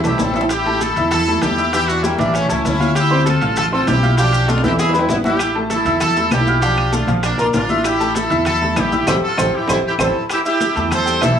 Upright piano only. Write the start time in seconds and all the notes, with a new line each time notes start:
0.04 A3 A4 A5
0.36 E4 E5 E6
0.66 A3 A4 A5
0.97 E4 E5 E6
1.28 A3 A4 A5
1.58 E4 E5 E6
1.74 E3 E4 E5
2.04 G3 G4 G5
2.19 E3 E4 E5
2.49 A3 A4 A5
2.80 F4 F5 F6
3.11 C4 C5 C6
3.42 F4 F5 F6
3.72 C4 C5 C6
4.03 F4 F5 F6
4.19 F3 F4 F5
4.48 A3 A4 A5
4.63 E3 E4 E5
4.94 B3 B4 B5
5.25 E4 E5 E6
5.55 A3 A4 A5
5.86 E4 E5 E6
6.16 A3 A4 A5
6.47 F4 F5 F6
6.62 F3 F4 F5
6.92 A3 A4 A5
7.07 F3 F4 F5
7.38 A#3 A#4 A#5
7.69 E4 E5 E6
8.00 A3 A4 A5
8.30 E4 E5 E6
8.62 A3 A4 A5
8.92 E4 E5 E6
9.08 G4 A4 C5
9.38 G4 A4 C5
9.69 G4 A4 C5
9.99 G4 A4 C5
10.45 E4 E5 E6
10.76 A3 A4 A5
11.05 G3 G4 G5
11.21 E3 E4 E5